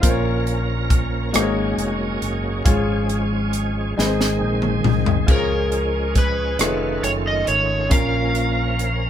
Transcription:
0.00 1.31 A#1 medium
0.00 1.30 A#2 medium
0.00 1.30 F3 medium
0.00 2.63 A#3 soft
0.00 1.31 C#4 medium
0.00 1.13 F4 medium
0.00 1.33 A#4 medium
0.00 1.14 A#4 medium
0.00 0.09 C5 medium
0.00 0.23 F5 soft
0.00 kick medium
0.00 closed hi-hat medium
0.09 1.17 C#5 medium
0.47 closed hi-hat soft
0.90 kick medium
0.90 closed hi-hat soft
1.31 2.62 G#2 medium
1.31 2.63 F#3 medium
1.31 2.45 A#3 medium
1.31 3.94 C#4 soft
1.31 2.45 D#4 medium
1.31 2.46 F#4 medium
1.31 3.93 G#4 medium
1.31 2.46 G#4 medium
1.31 closed hi-hat medium
1.35 1.75 G#1 medium
1.35 1.41 C5 medium
1.35 cross-stick medium
1.42 2.50 C#5 medium
1.78 2.18 F1 medium
1.78 closed hi-hat soft
2.22 2.62 F#1 medium
2.22 closed hi-hat soft
2.64 3.93 G#1 medium
2.64 3.93 G#2 medium
2.64 3.95 F3 soft
2.64 3.95 G#3 soft
2.64 3.77 F4 medium
2.64 3.77 G#4 medium
2.64 3.77 C#5 medium
2.64 kick medium
2.64 closed hi-hat medium
3.09 closed hi-hat soft
3.53 closed hi-hat soft
3.97 4.38 G#1 medium
3.97 5.25 G#2 medium
3.97 5.27 D#3 soft
3.97 6.57 G#3 soft
3.97 5.27 C4 soft
3.97 5.09 D#4 medium
3.97 6.58 G#4 medium
3.97 5.09 G#4 medium
3.97 4.05 B4 medium
3.97 snare soft
4.05 5.12 C5 medium
4.21 snare soft
4.41 4.81 A#1 medium
4.62 mid tom medium
4.84 5.25 C2 medium
4.84 mid tom medium
5.06 floor tom medium
5.26 6.56 C#2 medium
5.26 6.56 C#3 soft
5.26 6.59 F3 medium
5.26 9.10 C#4 soft
5.26 6.39 F4 medium
5.26 6.39 G#4 medium
5.26 5.35 C5 medium
5.26 kick medium
5.26 splash medium
5.31 6.18 A#4 medium
5.31 6.43 C#5 medium
5.72 closed hi-hat soft
6.15 7.08 B4 medium
6.15 kick medium
6.15 closed hi-hat soft
6.59 7.00 F1 medium
6.59 7.90 D#3 medium
6.59 7.71 A3 medium
6.59 7.90 A3 soft
6.59 7.71 D#4 soft
6.59 7.90 F4 medium
6.59 7.72 F4 soft
6.59 7.72 G#4 soft
6.59 7.72 C#5 medium
6.59 cross-stick medium
6.59 closed hi-hat medium
7.03 7.44 F#1 medium
7.03 7.10 C#5 medium
7.03 closed hi-hat soft
7.27 7.47 D#5 medium
7.47 7.88 G#1 medium
7.47 7.93 C#5 medium
7.47 closed hi-hat soft
7.89 9.10 A#1 medium
7.89 9.10 A#2 soft
7.89 9.10 F3 medium
7.89 9.02 C#4 medium
7.89 9.02 F4 medium
7.89 9.03 A#4 medium
7.89 9.10 A#4 medium
7.89 9.10 F5 medium
7.89 kick medium
7.89 closed hi-hat medium
7.94 9.10 A#3 soft
8.35 closed hi-hat soft
8.79 closed hi-hat soft

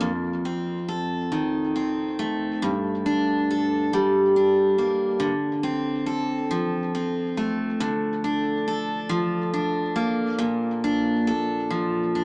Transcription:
0.00 2.62 F2 medium
0.00 1.31 F3 medium
0.00 0.11 A#3 medium
0.00 0.88 A4 medium
0.45 1.74 C4 medium
0.89 3.50 A4 medium
1.32 2.72 D#3 medium
1.76 2.72 C4 medium
2.19 3.96 A3 medium
2.62 5.23 G2 medium
3.06 4.36 D4 medium
3.50 6.06 A4 medium
3.93 5.32 G3 medium
4.36 5.63 D4 medium
4.78 5.31 A#3 medium
5.20 7.80 D3 medium
5.63 6.94 C4 medium
6.06 8.67 A4 medium
6.51 9.09 F3 medium
6.95 7.90 C4 medium
7.37 9.95 A3 medium
7.80 10.38 D3 medium
8.24 9.53 D4 medium
8.68 11.27 A4 medium
9.09 11.70 F3 medium
9.54 10.84 D4 medium
9.96 11.30 A#3 medium
10.39 12.24 A#2 medium
10.84 12.15 D4 medium
11.27 12.24 A4 medium
11.70 12.24 F3 medium
12.15 12.24 D4 medium

